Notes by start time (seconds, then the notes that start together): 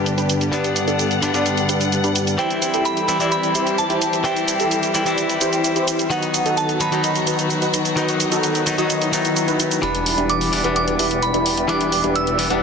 Already playing: G2 D3 G3 B3 D4 G4 B4
0.06 closed hi-hat, shaker
0.18 D4 G4 B4, closed hi-hat, shaker
0.30 closed hi-hat, shaker
0.41 closed hi-hat, shaker
0.52 G2 D3 G3 B3 D4 G4 B4 F#5, closed hi-hat, shaker
0.64 closed hi-hat, shaker
0.76 closed hi-hat, shaker
0.88 D4 G4 A4, closed hi-hat, shaker
0.99 closed hi-hat, shaker
1.11 closed hi-hat, shaker
1.22 G2 D3 G3 B3 D4, closed hi-hat, shaker
1.33 G2 D3 G3 B3 D4 G4 D5, closed hi-hat, shaker
1.46 closed hi-hat, shaker
1.57 closed hi-hat, shaker
1.69 D4 G4 B4, closed hi-hat, shaker
1.81 closed hi-hat, shaker
1.92 closed hi-hat, shaker
2.04 D4 G4 B4, closed hi-hat, shaker
2.16 closed hi-hat, shaker
2.27 closed hi-hat, shaker
2.38 E3 G3 C4 E4 G4 C5 G5, closed hi-hat, shaker
2.50 closed hi-hat, shaker
2.62 closed hi-hat, shaker
2.74 E4 G4 A4, closed hi-hat, shaker
2.85 B5, closed hi-hat, shaker
2.97 closed hi-hat, shaker
3.08 E3 G3 C4 E4, closed hi-hat, shaker
3.19 E3 G3 C4 E4 G4 D5, closed hi-hat, shaker
3.32 B5, closed hi-hat, shaker
3.43 closed hi-hat, shaker
3.55 E4 G4 C5, closed hi-hat, shaker
3.67 closed hi-hat, shaker
3.78 A5, closed hi-hat, shaker
3.90 E4 G4 C5, closed hi-hat, shaker
4.02 closed hi-hat, shaker
4.13 closed hi-hat, shaker
4.24 E3 G3 C4 E4 G4 C5 G5, closed hi-hat, shaker
4.36 closed hi-hat, shaker
4.48 closed hi-hat, shaker
4.60 E4 G4 A4, closed hi-hat, shaker
4.71 closed hi-hat, shaker
4.83 closed hi-hat, shaker
4.94 E3 G3 C4 E4, closed hi-hat, shaker
5.05 E3 G3 C4 E4 G4 D5, closed hi-hat, shaker
5.18 closed hi-hat, shaker
5.29 closed hi-hat, shaker
5.41 E4 G4 C5, closed hi-hat, shaker
5.53 closed hi-hat, shaker
5.64 closed hi-hat, shaker
5.76 E4 G4 C5, closed hi-hat, shaker
5.88 closed hi-hat, shaker
5.99 closed hi-hat, shaker
6.10 D#3 F#3 B3 D#4 F#4 B4 F#5, closed hi-hat, shaker
6.23 closed hi-hat, shaker
6.34 closed hi-hat, shaker
6.46 D#4 F#4 A4, closed hi-hat, shaker
6.57 A5, closed hi-hat, shaker
6.69 closed hi-hat, shaker
6.80 D#3 F#3 B3 D#4 B5, closed hi-hat, shaker
6.91 D#3 F#3 B3 D#4 F#4 D#5, closed hi-hat, shaker
7.04 closed hi-hat, shaker
7.16 closed hi-hat, shaker
7.27 D#4 F#4 B4, closed hi-hat, shaker
7.39 closed hi-hat, shaker
7.50 closed hi-hat, shaker
7.62 D#4 F#4 B4, closed hi-hat, shaker
7.74 closed hi-hat, shaker
7.85 closed hi-hat, shaker
7.96 D#3 F#3 B3 D#4 F#4 B4, closed hi-hat, shaker
8.09 closed hi-hat, shaker
8.20 closed hi-hat, shaker
8.32 D#4 F#4 A4, closed hi-hat, shaker
8.43 closed hi-hat, shaker
8.55 closed hi-hat, shaker
8.66 D#3 F#3 B3 D#4, closed hi-hat, shaker
8.78 D#3 F#3 B3 D#4 F#4 D#5, closed hi-hat, shaker
8.90 closed hi-hat, swell, shaker
9.02 closed hi-hat, shaker
9.12 D#3 F#3 B3 D#4, closed hi-hat, shaker
9.25 closed hi-hat, shaker
9.36 closed hi-hat, shaker
9.48 D#4 F#4 B4, closed hi-hat, shaker
9.60 closed hi-hat, shaker
9.71 closed hi-hat, shaker
9.82 E1 E3 G3 B3 D4 E4 G4 B4 D5 E5 B5, closed hi-hat
9.95 closed hi-hat
10.06 open hi-hat
10.18 E1 D4 E4 G4 B4 D5, closed hi-hat
10.29 D6, closed hi-hat
10.41 open hi-hat
10.52 E3 G3 B3 D4, open hi-hat
10.63 E1 E3 G3 B3 D4 E4 G4 B4 F#5, closed hi-hat
10.76 D6, closed hi-hat
10.88 closed hi-hat
10.99 E1 D4 E4 G4 B4 E5, open hi-hat
11.11 closed hi-hat
11.22 B5, closed hi-hat
11.34 E1 D4 E4 G4 B4 E5, closed hi-hat
11.46 open hi-hat
11.57 closed hi-hat
11.68 E1 E3 G3 B3 D4 E4 G4 B4 E5 D6, closed hi-hat
11.81 closed hi-hat
11.92 open hi-hat
12.04 E1 D4 E4 G4 B4 D5, closed hi-hat
12.16 E6, closed hi-hat
12.27 closed hi-hat
12.38 E3 G3 B3 D4, open hi-hat
12.49 E1 E3 G3 B3 D4 E4 G4 B4 F#5, closed hi-hat